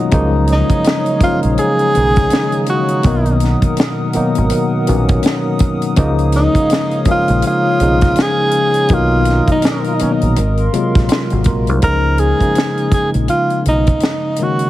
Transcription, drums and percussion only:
0.11 kick, closed hi-hat
0.47 closed hi-hat
0.51 snare
0.70 kick, closed hi-hat
0.84 snare, closed hi-hat
1.06 closed hi-hat
1.21 kick, closed hi-hat
1.43 closed hi-hat
1.58 closed hi-hat
1.79 closed hi-hat
1.95 closed hi-hat
2.16 kick, snare, closed hi-hat
2.30 snare, closed hi-hat
2.52 closed hi-hat
2.66 closed hi-hat
2.88 closed hi-hat
3.03 kick, closed hi-hat
3.25 closed hi-hat
3.40 closed hi-hat
3.44 snare
3.62 kick, closed hi-hat
3.77 snare, closed hi-hat
4.13 closed hi-hat
4.35 closed hi-hat
4.50 closed hi-hat
4.87 closed hi-hat
5.08 kick, closed hi-hat
5.23 snare, closed hi-hat
5.59 kick, closed hi-hat
5.82 closed hi-hat
5.96 kick, closed hi-hat
6.19 closed hi-hat
6.32 closed hi-hat
6.36 snare
6.55 kick, closed hi-hat
6.70 snare, closed hi-hat
6.91 closed hi-hat
7.05 kick, closed hi-hat
7.28 closed hi-hat
7.42 closed hi-hat
7.80 closed hi-hat
8.01 kick, snare, closed hi-hat
8.16 snare, closed hi-hat
8.51 closed hi-hat
8.74 closed hi-hat
8.89 kick, closed hi-hat
9.25 closed hi-hat
9.29 snare
9.48 kick, closed hi-hat
9.62 snare, closed hi-hat
9.84 closed hi-hat
9.99 closed hi-hat
10.21 closed hi-hat
10.36 closed hi-hat
10.57 closed hi-hat
10.74 closed hi-hat
10.95 kick, snare, closed hi-hat
11.09 snare, closed hi-hat
11.30 closed hi-hat
11.44 kick, closed hi-hat
11.67 closed hi-hat
11.82 kick, closed hi-hat
12.18 closed hi-hat
12.41 kick, closed hi-hat
12.55 snare, closed hi-hat
12.77 closed hi-hat
12.92 kick, closed hi-hat
13.14 closed hi-hat
13.28 closed hi-hat
13.50 closed hi-hat
13.66 closed hi-hat
13.87 kick, closed hi-hat
14.00 snare, closed hi-hat
14.36 closed hi-hat
14.59 closed hi-hat

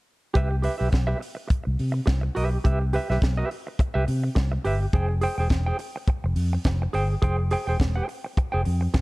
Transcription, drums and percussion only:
0.35 kick, closed hi-hat
0.63 open hi-hat
0.92 kick, snare, closed hi-hat
1.22 open hi-hat
1.50 kick, closed hi-hat
1.79 open hi-hat
2.07 kick, snare, closed hi-hat
2.36 open hi-hat
2.65 kick, closed hi-hat
2.93 open hi-hat
3.11 snare
3.22 kick, snare, closed hi-hat
3.51 open hi-hat
3.79 kick, closed hi-hat
4.08 open hi-hat
4.36 kick, snare, closed hi-hat
4.65 open hi-hat
4.93 kick, closed hi-hat
5.21 open hi-hat
5.50 kick, snare, closed hi-hat
5.79 open hi-hat
6.08 kick, closed hi-hat
6.36 open hi-hat
6.64 kick, snare, closed hi-hat
6.94 open hi-hat
7.22 kick, closed hi-hat
7.51 open hi-hat
7.80 kick, snare, closed hi-hat
8.09 open hi-hat
8.37 kick, closed hi-hat
8.65 open hi-hat
8.94 kick, snare, closed hi-hat

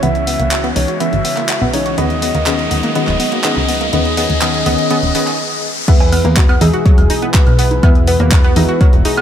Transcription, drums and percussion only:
0.03 closed hi-hat
0.15 closed hi-hat
0.27 open hi-hat
0.39 closed hi-hat
0.51 clap, closed hi-hat
0.64 closed hi-hat
0.76 open hi-hat
0.88 closed hi-hat
1.00 closed hi-hat
1.13 closed hi-hat
1.25 open hi-hat
1.37 clap, closed hi-hat
1.49 clap, closed hi-hat
1.73 open hi-hat
1.86 closed hi-hat
1.98 closed hi-hat
2.10 closed hi-hat
2.22 open hi-hat
2.35 closed hi-hat
2.46 clap, closed hi-hat
2.59 closed hi-hat
2.71 open hi-hat
2.83 closed hi-hat
2.95 closed hi-hat
3.07 clap, closed hi-hat
3.20 open hi-hat
3.32 closed hi-hat
3.44 clap, closed hi-hat
3.69 open hi-hat
3.81 closed hi-hat
3.93 closed hi-hat
4.05 closed hi-hat
4.17 open hi-hat
4.30 closed hi-hat
4.42 clap, closed hi-hat
4.54 closed hi-hat
4.66 open hi-hat
4.78 closed hi-hat
4.90 closed hi-hat
5.03 closed hi-hat
5.15 open hi-hat
5.27 clap, closed hi-hat
5.88 kick, closed hi-hat, crash
6.00 closed hi-hat, cowbell
6.12 open hi-hat, high woodblock
6.25 closed hi-hat
6.37 kick, clap, closed hi-hat
6.49 closed hi-hat, high woodblock
6.61 open hi-hat
6.74 closed hi-hat
6.86 kick, closed hi-hat
6.98 closed hi-hat, high woodblock
7.10 open hi-hat
7.22 closed hi-hat
7.34 kick, clap, closed hi-hat
7.47 closed hi-hat, high woodblock
7.59 open hi-hat
7.71 closed hi-hat, high conga
7.83 kick, closed hi-hat, high woodblock
7.95 closed hi-hat
8.07 open hi-hat
8.20 closed hi-hat
8.32 kick, clap, closed hi-hat, high woodblock
8.44 closed hi-hat
8.56 open hi-hat, high conga
8.69 closed hi-hat
8.81 kick, closed hi-hat, high woodblock
8.93 closed hi-hat
9.05 open hi-hat
9.17 closed hi-hat, high woodblock

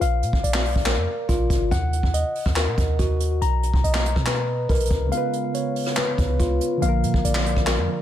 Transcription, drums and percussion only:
0.01 closed hi-hat
0.23 closed hi-hat
0.33 kick
0.44 closed hi-hat
0.54 snare, clap
0.65 open hi-hat
0.76 kick
0.86 snare, clap, closed hi-hat
1.29 kick, closed hi-hat
1.50 kick, closed hi-hat
1.71 kick, closed hi-hat
1.93 closed hi-hat
2.03 kick
2.14 closed hi-hat
2.35 open hi-hat
2.46 kick, cross-stick
2.56 snare, clap, closed hi-hat
2.78 kick, closed hi-hat
2.99 kick, closed hi-hat
3.20 closed hi-hat
3.42 closed hi-hat
3.63 closed hi-hat
3.74 kick
3.84 closed hi-hat
3.94 snare, clap
4.05 closed hi-hat
4.16 kick, cross-stick
4.26 snare, clap, closed hi-hat
4.69 kick, closed hi-hat
4.75 closed hi-hat
4.80 closed hi-hat
4.85 closed hi-hat
4.91 kick, closed hi-hat
5.12 closed hi-hat
5.33 closed hi-hat
5.54 closed hi-hat
5.76 open hi-hat
5.86 cross-stick
5.97 snare, clap, closed hi-hat
6.18 kick, closed hi-hat
6.39 kick, closed hi-hat
6.61 closed hi-hat
6.82 closed hi-hat
7.03 closed hi-hat
7.14 kick
7.25 closed hi-hat
7.35 snare, clap
7.46 closed hi-hat
7.56 kick, cross-stick
7.67 snare, clap, closed hi-hat

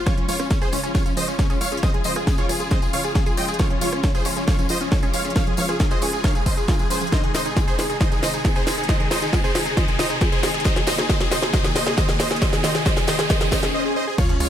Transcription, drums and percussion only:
0.06 kick, cross-stick, snare, closed hi-hat, tambourine
0.18 closed hi-hat
0.29 open hi-hat, tambourine
0.40 cross-stick, closed hi-hat, tambourine
0.51 kick, snare, closed hi-hat, tambourine
0.62 closed hi-hat, tambourine
0.73 open hi-hat, tambourine
0.84 closed hi-hat, tambourine
0.95 kick, snare, closed hi-hat, tambourine
1.06 closed hi-hat, tambourine
1.17 open hi-hat, tambourine
1.28 closed hi-hat, tambourine
1.39 kick, snare, closed hi-hat, tambourine
1.50 closed hi-hat, tambourine
1.61 open hi-hat, tambourine
1.72 closed hi-hat, tambourine
1.77 closed hi-hat
1.83 kick, cross-stick, snare, closed hi-hat, tambourine
1.94 closed hi-hat
2.04 open hi-hat, tambourine
2.16 cross-stick, closed hi-hat, tambourine
2.27 kick, snare, closed hi-hat, tambourine
2.38 closed hi-hat, tambourine
2.49 open hi-hat, tambourine
2.60 closed hi-hat, tambourine
2.71 kick, snare, closed hi-hat, tambourine
2.82 closed hi-hat, tambourine
2.93 open hi-hat, tambourine
3.04 closed hi-hat, tambourine
3.15 kick, snare, closed hi-hat, tambourine
3.26 closed hi-hat, tambourine
3.37 open hi-hat, tambourine
3.48 closed hi-hat, tambourine
3.54 closed hi-hat
3.59 kick, cross-stick, snare, closed hi-hat, tambourine
3.70 closed hi-hat
3.81 open hi-hat, tambourine
3.93 cross-stick, closed hi-hat, tambourine
4.03 kick, snare, closed hi-hat, tambourine
4.15 closed hi-hat, tambourine
4.25 open hi-hat, tambourine
4.37 closed hi-hat, tambourine
4.48 kick, snare, closed hi-hat, tambourine
4.59 closed hi-hat, tambourine
4.69 open hi-hat, tambourine
4.81 tambourine
4.92 kick, snare, closed hi-hat, tambourine
5.02 closed hi-hat, tambourine
5.13 open hi-hat, tambourine
5.25 closed hi-hat, tambourine
5.30 closed hi-hat
5.36 kick, cross-stick, snare, closed hi-hat, tambourine
5.47 closed hi-hat
5.57 open hi-hat, tambourine
5.69 cross-stick, closed hi-hat, tambourine
5.80 kick, snare, closed hi-hat, tambourine
5.91 closed hi-hat, tambourine
6.02 open hi-hat, tambourine
6.13 closed hi-hat, tambourine
6.24 kick, snare, closed hi-hat, tambourine
6.35 closed hi-hat, tambourine
6.46 kick, open hi-hat, tambourine
6.57 closed hi-hat, tambourine
6.68 kick, snare, closed hi-hat, tambourine
6.79 closed hi-hat, tambourine
6.90 open hi-hat, tambourine
7.01 closed hi-hat, tambourine
7.07 closed hi-hat
7.12 kick, snare, closed hi-hat, tambourine
7.24 closed hi-hat
7.34 snare, open hi-hat, tambourine
7.46 closed hi-hat, tambourine
7.57 kick, snare, closed hi-hat, tambourine
7.68 closed hi-hat, tambourine
7.79 snare, open hi-hat, tambourine
7.90 closed hi-hat, tambourine
8.01 kick, snare, closed hi-hat, tambourine
8.12 closed hi-hat, tambourine
8.23 snare, open hi-hat, tambourine
8.33 closed hi-hat, tambourine
8.45 kick, snare, closed hi-hat, tambourine
8.55 closed hi-hat, tambourine
8.67 snare, open hi-hat, tambourine
8.78 closed hi-hat, tambourine
8.83 closed hi-hat
8.89 kick, snare, closed hi-hat, tambourine
9.00 closed hi-hat
9.11 snare, open hi-hat, tambourine
9.22 closed hi-hat, tambourine
9.33 kick, snare, closed hi-hat, tambourine
9.44 closed hi-hat, tambourine
9.55 snare, open hi-hat, tambourine
9.66 closed hi-hat, tambourine
9.77 kick, snare, closed hi-hat, tambourine
9.88 closed hi-hat, tambourine
9.99 snare, open hi-hat, tambourine
10.10 closed hi-hat, tambourine
10.21 kick, snare, closed hi-hat, tambourine
10.32 closed hi-hat, tambourine
10.43 snare, open hi-hat, tambourine
10.54 closed hi-hat, tambourine
10.60 closed hi-hat
10.64 kick, snare, closed hi-hat, tambourine
10.76 snare, closed hi-hat
10.87 snare, open hi-hat, tambourine
10.98 snare, closed hi-hat, tambourine
11.09 kick, snare, closed hi-hat, tambourine
11.20 snare, closed hi-hat, tambourine
11.31 snare, open hi-hat, tambourine
11.42 snare, closed hi-hat, tambourine
11.53 kick, snare, closed hi-hat, tambourine
11.65 snare, closed hi-hat, tambourine
11.76 snare, open hi-hat, tambourine
11.87 snare, closed hi-hat, tambourine
11.98 kick, snare, closed hi-hat, tambourine
12.09 snare, closed hi-hat, tambourine
12.20 snare, open hi-hat, tambourine
12.31 snare, closed hi-hat, tambourine
12.36 closed hi-hat
12.42 kick, snare, closed hi-hat, tambourine
12.53 snare, closed hi-hat, tambourine
12.64 snare, open hi-hat, tambourine
12.75 snare, closed hi-hat, tambourine
12.86 kick, snare, closed hi-hat, tambourine
12.97 snare, closed hi-hat, tambourine
13.08 snare, open hi-hat, tambourine
13.19 snare, closed hi-hat, tambourine
13.30 kick, snare, closed hi-hat, tambourine
13.41 snare, closed hi-hat, tambourine
13.52 kick, snare, open hi-hat, tambourine
13.63 snare, closed hi-hat, tambourine
14.18 kick, cross-stick, closed hi-hat, crash, tambourine
14.29 closed hi-hat
14.40 open hi-hat, ride, tambourine

